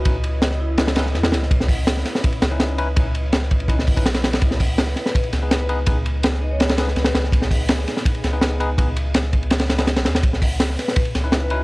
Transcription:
<<
  \new Staff \with { instrumentName = "Vibraphone" } { \time 4/4 \key cis \minor \tempo 4 = 165 r4. e'8 r8 e'4. | r1 | r1 | r4. b'8 r4 r16 b'16 r8 |
r4. dis''16 cis''16 cis''16 r16 b'4. | r1 | r1 | r4. b'8 r4 r16 b'16 fis'16 fis'16 | }
  \new Staff \with { instrumentName = "Ambient pad" } { \time 4/4 \key cis \minor << { b'1~ | b'1~ | b'1~ | b'1~ |
b'1~ | b'1~ | b'1 | r1 | } \\ { <cis' e' dis''>1~ | <cis' e' dis''>1~ | <cis' e' dis''>1 | <b dis' gis'>1~ |
<b dis' gis'>1~ | <b dis' gis'>1~ | <b dis' gis'>1 | r1 | } >> }
  \new Staff \with { instrumentName = "Tine electric piano" } { \time 4/4 \key cis \minor <cis' dis' e' b'>16 r4. r16 <cis' dis' e' b'>16 r16 <cis' dis' e' b'>16 r4 r16 | r2 r8. <cis' dis' e' b'>8. <cis' dis' e' b'>16 r16 | <cis' dis' e' b'>16 r4. r16 <cis' dis' e' b'>16 r8 <cis' dis' e' b'>16 r4 | r2 r8. <b dis' gis' b'>8. <b dis' gis' b'>16 r16 |
<b dis' gis' b'>16 r4. r16 <b dis' gis' b'>16 r16 <b dis' gis' b'>16 r4 r16 | r2 r8. <b dis' gis' b'>8. <b dis' gis' b'>16 r16 | <b dis' gis' b'>16 r2 r8 <b dis' gis' b'>16 r4 | r2 r8. <cis' dis' e' b'>8. <cis' dis' e' b'>16 r16 | }
  \new Staff \with { instrumentName = "Sub bass" } { \clef bass \time 4/4 \key cis \minor cis,2. e,8 cis,8 | cis,4. r4 cis,4.~ | cis,2~ cis,8. b,,4~ b,,16 | cis,4. r4 cis,4.~ |
cis,2. cis,8 cis,8 | cis,4. r4 cis,4.~ | cis,2.~ cis,16 b,,16 dis,8 | cis,4. r4 cis,4. | }
  \new DrumStaff \with { instrumentName = "Drums" } \drummode { \time 4/4 <bd cymr>8 cymr8 <cymr sn>16 sn8. <cymr sn>16 <cymr sn>16 <cymr sn>16 sn16 <cymr sn>16 <cymr sn>16 <cymr sn>16 sn16 | <bd cymr>16 sn16 <hho bd>8 <cymr sn>16 sn16 <cymr sn>16 sn16 <bd cymr>16 cymr16 <cymr sn>8 <cymr sn>8 cymr8 | <bd cymr>8 cymr8 <cymr sn>16 sn16 <bd cymr>16 cymr16 <bd cymr>16 sn16 <hho bd>16 <bd cymr>16 <cymr sn>16 <cymr sn>16 <cymr sn>16 <cymr sn>16 | <bd cymr>16 sn16 <hho bd>8 <cymr sn>16 sn16 <cymr sn>16 sn16 <bd cymr>16 cymr16 <cymr sn>8 <cymr sn>8 cymr8 |
<bd cymr>8 cymr8 <cymr sn>16 sn8. <cymr sn>16 <cymr sn>16 <cymr sn>16 sn16 <cymr sn>16 <cymr sn>16 <cymr sn>16 sn16 | <bd cymr>16 sn16 <hho bd>8 <cymr sn>16 sn16 <cymr sn>16 sn16 <bd cymr>16 cymr16 <cymr sn>8 <cymr sn>8 cymr8 | <bd cymr>8 cymr8 <cymr sn>16 sn16 <bd cymr>16 cymr16 <cymr sn>16 <cymr sn>16 <cymr sn>16 <cymr sn>16 <cymr sn>16 <cymr sn>16 <cymr sn>16 <cymr sn>16 | <bd cymr>16 sn16 <hho bd>8 <cymr sn>16 sn16 <cymr sn>16 sn16 <bd cymr>16 cymr16 <cymr sn>8 <cymr sn>8 cymr8 | }
>>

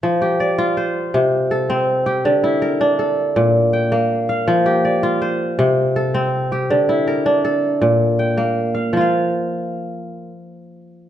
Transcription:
<<
  \new Staff \with { instrumentName = "Kora" } { \time 12/8 \key f \major \tempo 4. = 108 r8 g'8 d''4 c''4. r8 a'4. g'8~ | g'8 e'8 bes'4 a'4. r8 g''4. f''8~ | f''8 g'8 d''4 c''4. r8 a'4. g'8~ | g'8 e'8 bes'4 a'4. r8 g''4. f''8~ |
f''8 r1 r4. | }
  \new Staff \with { instrumentName = "Kora" } { \time 12/8 \key f \major f4 r8 f'4 r8 c4 r8 c'4 r8 | d4 r8 d'4 r8 bes,4 r8 bes4 r8 | f4 r8 f'4 r8 c4 r8 c'4 r8 | d4 r8 d'4 r8 bes,4 r8 bes4 r8 |
<f f' f''>1. | }
>>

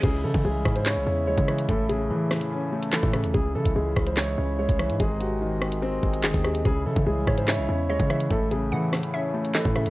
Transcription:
<<
  \new Staff \with { instrumentName = "Synth pluck" } { \time 4/4 \key cis \minor \tempo 4 = 145 r1 | r1 | r1 | r1 |
r4. cis''8 e''4 dis''8 e''8 | r4 fis''4 e''4 dis''8 e''8 | }
  \new Staff \with { instrumentName = "Grand piano" } { \time 4/4 \key cis \minor gis'8 a'8 gis'8. bis'16 cis''4 cis''4 | a'8 gis'2~ gis'8 a'4 | gis'8 a'8 gis'8. bis'16 cis''4 cis''4 | gis'8 fis'2~ fis'8 gis'8 gis'8 |
gis'8 a'8 gis'8. bis'16 cis''4 cis''4 | a'8 gis'2~ gis'8 a'4 | }
  \new Staff \with { instrumentName = "Harmonium" } { \clef bass \time 4/4 \key cis \minor << { <cis e e'>1~ | <cis e e'>1~ | <cis e e'>1 | <bis, dis dis'>1 |
<cis e e'>1~ | <cis e e'>1 | } \\ { gis1 | a1 | gis1~ | gis1~ |
gis1 | a1 | } >> }
  \new Staff \with { instrumentName = "Felt piano" } { \clef bass \time 4/4 \key cis \minor cis8 e8 gis4 cis''8 cis'8 gis8 e8 | a,8 cis8 e4 cis'8 a8 e8 cis8 | cis8 e8 gis4 cis''8 cis'8 gis8 e8 | gis,8 bis,8 dis4 bis8 gis8 dis8 bis,8 |
cis8 e8 gis4 cis''8 cis'8 gis8 e8 | a,8 cis8 e4 cis'8 a8 e8 cis8 | }
  \new Staff \with { instrumentName = "808-style bass" } { \clef bass \time 4/4 \key cis \minor cis,8 cis16 cis16 bis,,8 gis,8. bis,,16 e,8 dis,16 cis8. | a,,4 e8. r4. a,8 e,16 | cis,8 cis16 bis,,16 cis,8 cis,4 cis,8. bis,,8 gis,16 | gis,,2~ gis,,8 gis,,8 fis,,16 dis,8. |
cis,8 cis16 cis16 bis,,8 gis,8. bis,,16 e,8 dis,16 cis8. | a,,4 e8. r4. a,8 e,16 | }
  \new DrumStaff \with { instrumentName = "Drums" } \drummode { \time 4/4 <cymc hh bd>8. <hh bd>16 r8 <bd ss>16 hh16 <hc sn>4 r16 <hh bd>16 <hh ss>16 hh16 | <hh bd>8 hh8 r8 <ss sn>16 hh16 r8. hh16 <hc sn>16 bd16 <hh ss>16 hh16 | <hh bd>8. <hh bd>16 r8 <bd ss>16 hh16 <hc sn>4 r16 <hh bd>16 <hh ss>16 hh16 | <hh bd>8 hh8 r8 ss16 hh16 r8 bd16 hh16 <hc sn>16 bd16 <hh ss>16 hh16 |
<hh bd>8. <hh bd>16 r8 <bd ss>16 hh16 <hc sn>4 r16 <hh bd>16 <hh ss>16 hh16 | <hh bd>8 hh8 r8 <ss sn>16 hh16 r8. hh16 <hc sn>16 bd16 <hh ss>16 hh16 | }
>>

